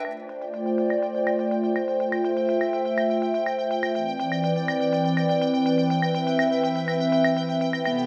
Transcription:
0.05 3.91 A3 medium
0.05 3.91 F4 medium
0.05 3.91 C5 medium
0.05 1.98 D5 medium
0.05 8.06 G5 medium
0.05 closed hi-hat medium
0.05 claves soft
0.29 closed hi-hat medium
0.41 closed hi-hat soft
0.41 cabasa medium
0.54 closed hi-hat medium
0.66 closed hi-hat soft
0.78 closed hi-hat medium
0.90 closed hi-hat soft
0.90 claves soft
1.02 closed hi-hat medium
1.15 closed hi-hat soft
1.27 closed hi-hat medium
1.27 claves medium
1.39 closed hi-hat soft
1.51 closed hi-hat medium
1.64 closed hi-hat soft
1.76 closed hi-hat medium
1.76 claves soft
1.88 closed hi-hat soft
2.00 3.93 E5 medium
2.00 closed hi-hat medium
2.12 claves medium
2.25 closed hi-hat medium
2.25 cabasa medium
2.37 closed hi-hat soft
2.37 cabasa medium
2.45 cabasa medium
2.49 closed hi-hat medium
2.53 cabasa soft
2.61 closed hi-hat soft
2.61 claves soft
2.67 closed hi-hat soft
2.73 closed hi-hat medium
2.79 closed hi-hat soft
2.85 closed hi-hat soft
2.98 closed hi-hat medium
2.98 claves medium
3.10 closed hi-hat soft
3.22 closed hi-hat medium
3.34 closed hi-hat soft
3.34 cabasa medium
3.46 closed hi-hat medium
3.46 claves soft
3.59 closed hi-hat soft
3.71 closed hi-hat medium
3.83 closed hi-hat soft
3.83 claves medium
3.95 7.82 E3 medium
3.95 7.82 C4 medium
3.95 7.82 B4 medium
3.95 5.88 D5 medium
3.95 closed hi-hat medium
4.20 closed hi-hat medium
4.32 cabasa medium
4.32 claves soft
4.44 closed hi-hat medium
4.56 closed hi-hat soft
4.68 closed hi-hat medium
4.68 claves medium
4.80 closed hi-hat soft
4.93 closed hi-hat medium
5.05 closed hi-hat soft
5.17 closed hi-hat medium
5.17 claves soft
5.29 closed hi-hat soft
5.41 closed hi-hat medium
5.54 closed hi-hat soft
5.66 closed hi-hat medium
5.78 closed hi-hat soft
5.90 7.83 E5 medium
5.90 closed hi-hat medium
6.02 claves soft
6.15 closed hi-hat medium
6.15 cabasa medium
6.27 closed hi-hat soft
6.27 cabasa medium
6.39 closed hi-hat medium
6.39 claves medium
6.51 closed hi-hat soft
6.63 closed hi-hat medium
6.76 closed hi-hat soft
6.88 closed hi-hat medium
6.88 claves soft
7.00 closed hi-hat soft
7.12 closed hi-hat medium
7.24 closed hi-hat soft
7.24 cabasa medium
7.24 claves medium
7.37 closed hi-hat medium
7.49 closed hi-hat soft
7.61 closed hi-hat medium
7.73 closed hi-hat soft
7.73 claves soft
7.85 8.06 C3 medium
7.85 8.06 B3 medium
7.85 8.06 G4 medium
7.85 8.06 A4 medium
7.85 closed hi-hat medium
7.85 claves soft

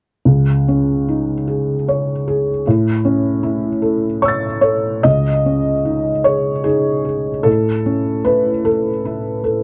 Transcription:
0.26 2.61 C#2 soft
0.68 1.33 C#4 soft
1.09 1.73 D#4 soft
1.47 2.11 G#4 soft
1.88 2.50 C#5 soft
2.28 2.66 G#4 soft
2.67 5.02 A2 medium
3.05 3.67 C#4 soft
3.43 4.06 E4 soft
3.82 4.47 A4 soft
4.22 4.60 C#5 soft
4.22 5.01 C#6 soft
4.22 5.02 E6 soft
4.28 5.04 A6 soft
4.61 5.05 A4 soft
4.61 5.04 C#5 medium
5.03 7.42 C#2 soft
5.03 6.26 D#5 medium
5.46 6.10 C#4 soft
5.85 6.50 D#4 soft
6.24 6.63 G#4 soft
6.24 6.65 C#5 medium
6.64 7.30 D#4 soft
6.64 7.03 G#4 medium
7.05 7.45 G#4 soft
7.43 9.63 A2 soft
7.43 8.26 A4 medium
7.86 8.51 C#4 soft
8.24 8.89 E4 soft
8.24 8.65 B4 medium
8.65 9.43 A4 medium
9.06 9.63 E4 soft
9.44 9.63 A4 soft

